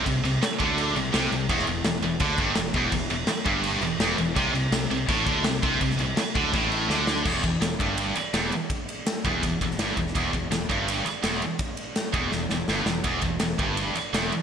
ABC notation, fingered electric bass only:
X:1
M:4/4
L:1/8
Q:1/4=166
K:Em
V:1 name="Fingered electric bass" clef=bass
C,, C,, z D,,2 C,, C,, C,, | E,,, E,,, E,,, E,,, D,, G,,, E,,, E,,, | E,,, E,,, z G,,,2 E,,, E,,, E,,, | C,, C,, C,, C,, A,,, D,, C,, C,, |
C,, C,, z D,, A,,,2 D,,2 | E,,, E,,, E,,, G,,,2 z E,,, z | z3 E,,, E,,, E,,, G,,, E,,, | E,,, E,,, E,,, G,,,2 z E,,, z |
z3 E,,, E,,, E,,, G,,, E,,, | E,,, E,,, E,,, G,,,2 z E,,, z |]